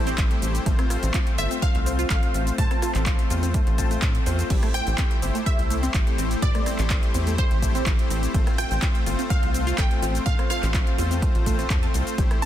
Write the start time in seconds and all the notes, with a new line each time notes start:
Already playing: A1 G3 A3 C4 E4 G4 C5
0.07 C4, closed hi-hat, shaker
0.18 A1 E4, kick, clap, closed hi-hat, shaker
0.31 A3 E4 G4 C5, closed hi-hat
0.42 A1, open hi-hat, shaker
0.55 closed hi-hat, shaker
0.66 A1 A3 C4 F4 C5, kick, closed hi-hat, shaker
0.79 C4, cross-stick, closed hi-hat
0.90 F4, cross-stick, open hi-hat, shaker
1.03 A1, closed hi-hat, shaker
1.14 F4, kick, clap, closed hi-hat, shaker
1.27 closed hi-hat
1.38 G1 A3 C4 F4 C5 E5, open hi-hat, shaker
1.51 C4, closed hi-hat, shaker
1.62 A3 F5, kick, closed hi-hat, shaker
1.75 C2, closed hi-hat
1.86 C4, open hi-hat, shaker
1.99 F4, closed hi-hat, shaker
2.10 A1 A4 F5, kick, clap, closed hi-hat, shaker
2.23 A3 C4 F4 C5, closed hi-hat
2.34 A1, open hi-hat, shaker
2.47 closed hi-hat, shaker
2.58 A2 A3 C4 F4 C5 A5, kick, closed hi-hat, shaker
2.71 C4, cross-stick, closed hi-hat
2.82 F4, cross-stick, open hi-hat, shaker
2.95 A1, clap, closed hi-hat, shaker
3.06 F4, kick, clap, closed hi-hat, shaker
3.19 closed hi-hat
3.30 E2 A3 C4 F4 C5, open hi-hat, shaker
3.43 C4, closed hi-hat, shaker
3.54 A3, kick, closed hi-hat, shaker
3.67 A1, closed hi-hat
3.78 A3 C4 F4 C5 A5, kick, open hi-hat, shaker
3.91 A3, closed hi-hat, shaker
4.02 A2 A5, kick, clap, closed hi-hat, shaker
4.15 closed hi-hat
4.26 E2 A3 C4 F4 C5, open hi-hat, shaker
4.39 closed hi-hat, shaker
4.50 A1 G3 A3 C4 E4 G4 C5, kick, closed hi-hat, crash, shaker
4.63 A3, cross-stick, closed hi-hat
4.74 C4 G5, cross-stick, open hi-hat, shaker
4.87 A1, closed hi-hat, shaker
4.98 C4, kick, clap, closed hi-hat, shaker
5.11 closed hi-hat
5.22 G1 A3 C4 E4 G4 C5, open hi-hat, shaker
5.35 A3, closed hi-hat, shaker
5.46 G3 E5, kick, closed hi-hat, shaker
5.59 C2, closed hi-hat
5.70 A3, open hi-hat, shaker
5.83 C4, closed hi-hat, shaker
5.94 A1 E4, kick, clap, closed hi-hat, shaker
6.07 A3 E4 G4 C5, closed hi-hat
6.18 A1 C4, open hi-hat, shaker
6.31 closed hi-hat, shaker
6.42 A2 G3 A3 E4 G4 C5 D5, kick, closed hi-hat, shaker
6.55 A3, cross-stick, closed hi-hat
6.66 C4, cross-stick, open hi-hat, shaker
6.79 A1, clap, closed hi-hat, shaker
6.90 C4, kick, clap, closed hi-hat, shaker
7.03 closed hi-hat
7.14 E2 A3 C4 E4 G4 C5, open hi-hat, shaker
7.27 A3, closed hi-hat, shaker
7.38 G3 C5, kick, closed hi-hat, shaker
7.51 A1, closed hi-hat
7.62 A3, kick, open hi-hat, shaker
7.75 C4, closed hi-hat, shaker
7.86 A1 E4, kick, clap, closed hi-hat, shaker
7.99 A3 E4 G4 C5, closed hi-hat
8.10 A1 C4, open hi-hat, shaker
8.23 closed hi-hat, shaker
8.34 A1 A3 C4 F4 C5, kick, closed hi-hat, shaker
8.47 C4, cross-stick, closed hi-hat
8.58 F4 G5, cross-stick, open hi-hat, shaker
8.71 A1, closed hi-hat, shaker
8.82 F4, kick, clap, closed hi-hat, shaker
8.95 closed hi-hat
9.06 G1 A3 C4 F4 C5, open hi-hat, shaker
9.19 C4, closed hi-hat, shaker
9.30 A3 F5, kick, closed hi-hat, shaker
9.43 C2, closed hi-hat
9.54 C4, open hi-hat, shaker
9.67 F4, closed hi-hat, shaker
9.78 A1 A4 G5, kick, clap, closed hi-hat, shaker
9.91 A3 C4 F4 C5, closed hi-hat
10.02 A1 F4, open hi-hat, shaker
10.15 closed hi-hat, shaker
10.26 A2 A3 C4 F4 C5 F5, kick, closed hi-hat, shaker
10.39 C4, cross-stick, closed hi-hat
10.50 F4 F5, cross-stick, open hi-hat, shaker
10.63 A1, clap, closed hi-hat, shaker
10.74 F4, kick, clap, closed hi-hat, shaker
10.87 closed hi-hat
10.98 E2 A3 C4 F4 C5, open hi-hat, shaker
11.11 C4, closed hi-hat, shaker
11.22 A3, kick, closed hi-hat, shaker
11.35 A1, closed hi-hat
11.46 A3, kick, open hi-hat, shaker
11.59 C4, closed hi-hat, shaker
11.70 E2 A4, kick, clap, closed hi-hat, shaker
11.83 A3 C4 F4 C5 A5, closed hi-hat
11.94 C2, open hi-hat, shaker
12.07 closed hi-hat, shaker
12.18 A1 G3 A3 E4 G4 C5, kick, closed hi-hat, shaker
12.31 A3, cross-stick, closed hi-hat
12.42 C4 A5, cross-stick, open hi-hat